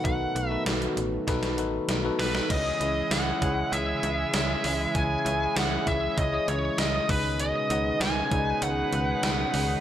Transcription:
Already playing: B2 D#3 F#3 A3 B3 D#4 F#4 A4 B4
0.04 B1 D#4 F#4 A4 B4 F#5, kick, closed hi-hat
0.35 B1, closed hi-hat
0.49 D#4 F#4 A4 B4 E5
0.66 B1, snare, closed hi-hat
0.82 closed hi-hat
0.97 A1, closed hi-hat
1.27 B1 D#4 F#4 A4 B4, kick, snare, closed hi-hat
1.43 snare, closed hi-hat
1.58 A1 D#4 F#4 A4 B4, closed hi-hat
1.88 B1, snare, closed hi-hat
2.04 D#4 F#4 A4 B4
2.19 B1 B4, snare, open hi-hat
2.35 snare
2.50 C#2 C#3 E3 G#3 C#4 E4 G#4 C#5 D#5, kick, closed hi-hat, crash
2.80 C#2 E4 G#4 C#5 D#5, closed hi-hat
3.11 C#2 F#5, snare, closed hi-hat, tambourine
3.42 C#2 E4 G#4 C#5 E5, kick, closed hi-hat
3.72 C#2 E5, closed hi-hat
4.03 C#2, closed hi-hat
4.34 C#2, snare, closed hi-hat, tambourine
4.64 C#2, open hi-hat
4.95 C#2 C#3 E4 G#4 C#5 E5 G#5, kick, closed hi-hat
5.25 C#2 E4 G#4 C#5 E5, closed hi-hat
5.56 C#2 F#5, snare, closed hi-hat, tambourine
5.86 C#2 E4 G#4 C#5 E5, kick, closed hi-hat
6.18 C#2 D#5, kick, closed hi-hat
6.32 E4 G#4 C#5 D#5
6.48 C#2 C#5, closed hi-hat
6.78 C#2 D#5, snare, closed hi-hat, tambourine
7.09 C#2 B2 C#3 D#3 D#4 G#4 B4 D#5, kick, open hi-hat
7.40 D#5, closed hi-hat
7.70 C#2 D#4 G#4 B4 F#5, closed hi-hat
8.00 C#2 G#5, snare, closed hi-hat, tambourine
8.31 C#2 D#4 G#4 B4 D5, kick, closed hi-hat
8.39 D#5
8.62 C#2 F#5, closed hi-hat
8.93 C#2, closed hi-hat
9.23 C#2, snare, closed hi-hat, tambourine
9.54 C#2 C#3, open hi-hat

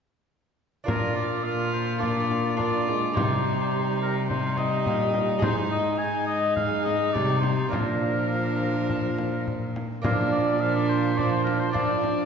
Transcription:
0.84 D4 F4 A#4
0.88 A#2 A#3 F4, frame drum
1.16 D5
1.44 A#3 F4 F5
1.73 C5
1.98 D4 F4 A#4 D5
2.03 A#3, frame drum
2.31 frame drum
2.56 A#3 D4 F4 A#4 D5, frame drum
2.89 G#3, frame drum
3.13 C3 G3 D#4 G4 C5, frame drum
4.02 A#4
4.29 G3 D#4 C5, frame drum
4.57 D#5, frame drum
4.86 A#2, frame drum
5.14 frame drum
5.39 G#2 D#4 G#4, frame drum
5.43 G#2 G#3 D#4 C5
5.71 D#5
5.98 G#3 D#4 G#5
6.26 D#5
6.56 F5, frame drum
6.84 D#5, frame drum
7.13 C3 G3 D5, frame drum
7.41 C5, frame drum
7.69 F3 A#3 D4 F4 A#4
7.73 A#2 D4, frame drum
8.90 frame drum
9.19 frame drum
9.47 frame drum
9.76 frame drum
10.02 A#2 F3 A#3 D4 F4 A#4, frame drum
10.06 A#2
10.33 D5
10.61 F3 D4 F5
10.76 D5
10.89 C5
11.17 F3 D4 D5, frame drum
11.31 C5
11.44 A#4, frame drum
11.59 C5
11.71 A#3 D4 F4 D5
11.75 F3, frame drum
12.04 frame drum

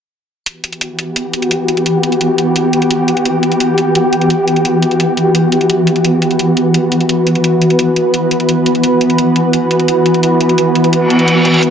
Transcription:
0.46 E3 B3 F#4 G4, closed hi-hat
0.64 closed hi-hat
0.73 closed hi-hat
0.81 closed hi-hat
0.99 closed hi-hat
1.16 closed hi-hat
1.33 closed hi-hat
1.42 closed hi-hat
1.51 closed hi-hat
1.68 closed hi-hat
1.77 closed hi-hat
1.86 closed hi-hat
2.03 closed hi-hat
2.12 closed hi-hat
2.21 closed hi-hat
2.38 closed hi-hat
2.56 closed hi-hat
2.73 closed hi-hat
2.82 closed hi-hat
2.91 closed hi-hat
3.08 closed hi-hat
3.17 closed hi-hat
3.25 closed hi-hat
3.43 closed hi-hat
3.52 closed hi-hat
3.60 closed hi-hat
3.78 closed hi-hat
3.95 closed hi-hat
4.13 closed hi-hat
4.21 closed hi-hat
4.30 closed hi-hat
4.48 closed hi-hat
4.56 closed hi-hat
4.65 closed hi-hat
4.82 closed hi-hat
4.91 closed hi-hat
5.00 closed hi-hat
5.17 closed hi-hat
5.35 closed hi-hat
5.52 closed hi-hat
5.61 closed hi-hat
5.70 closed hi-hat
5.87 closed hi-hat
5.96 closed hi-hat
6.04 B4, closed hi-hat
6.22 closed hi-hat
6.31 closed hi-hat
6.39 closed hi-hat
6.57 closed hi-hat
6.74 closed hi-hat
6.92 closed hi-hat
7.01 closed hi-hat
7.09 closed hi-hat
7.27 closed hi-hat
7.35 closed hi-hat
7.44 closed hi-hat
7.62 closed hi-hat
7.70 closed hi-hat
7.79 closed hi-hat
7.96 closed hi-hat
8.14 closed hi-hat
8.31 closed hi-hat
8.40 closed hi-hat
8.49 closed hi-hat
8.66 closed hi-hat
8.75 closed hi-hat
8.84 closed hi-hat
9.01 closed hi-hat
9.10 closed hi-hat
9.18 closed hi-hat
9.36 closed hi-hat
9.53 closed hi-hat
9.71 closed hi-hat
9.80 closed hi-hat
9.88 closed hi-hat
10.06 closed hi-hat
10.14 closed hi-hat
10.23 closed hi-hat
10.41 closed hi-hat
10.49 closed hi-hat
10.58 closed hi-hat
10.75 closed hi-hat
10.84 closed hi-hat
10.93 closed hi-hat, reverse cymbal
11.10 closed hi-hat
11.19 closed hi-hat
11.28 closed hi-hat
11.45 closed hi-hat
11.54 closed hi-hat
11.63 G4, closed hi-hat

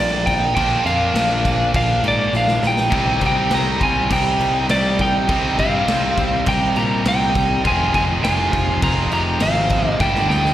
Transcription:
Already playing: A#1 A#2 F3 A#3 D5
0.25 D#4 G5, kick, crash
0.55 A#1 A#2 F3 D4 G5, kick, crash
0.59 A#3
0.84 F2 D4 F5, crash
1.14 A#1, snare, crash
1.45 kick, crash
1.74 A#1 D4 F5, kick, crash
2.03 G#2 A#3, crash
2.08 D5
2.33 A#1 D4 F5, snare
2.48 snare
2.63 A#1 D#4, snare
2.67 G5
2.77 snare
2.91 C2 C3 G3 C4 D#4 G4, kick, crash
3.21 C2 D#4, kick, crash
3.26 G5
3.51 C2 G4, snare, crash
3.55 A#5
3.81 C2 F4 G#5, kick, crash
4.09 C2 C3 G3 C4 D#4 G4 G5, kick, crash
4.40 C2, crash
4.69 C2 G3 D5, snare, crash
4.99 D#4 G5, kick, crash
5.27 C2 C3 G3 C4 D#4 G4, kick, crash
5.58 G2 C4 F5, kick, crash
5.88 C2, snare, crash
6.17 kick, crash
6.45 C2 C3 G3 C4 D#4 G4 G5, kick, crash
6.76 A#2 G4 A#5, crash
7.05 C2 D#4 G5, snare, crash
7.35 C2, kick, crash
7.63 F1 F2 C3 F3 G#3 C4 F4 G#4 G#5, kick, crash
7.94 F1 F4 G#5, kick, crash
8.23 F1 F4 G#5, snare, crash
8.53 F1, kick, crash
8.80 F1 F2 C3 F3 G#3 C4 F4 A#5, kick, crash
8.85 G#4
9.12 F1 G4 A#5, crash
9.40 G#1 C4 F5, snare, crash
9.70 kick, crash
9.84 A#3 D#5
9.99 G1 G2 D3 G3 A#3 D4 G4 G5, kick, snare
10.15 snare
10.29 D2 D#4 G5, snare
10.45 snare

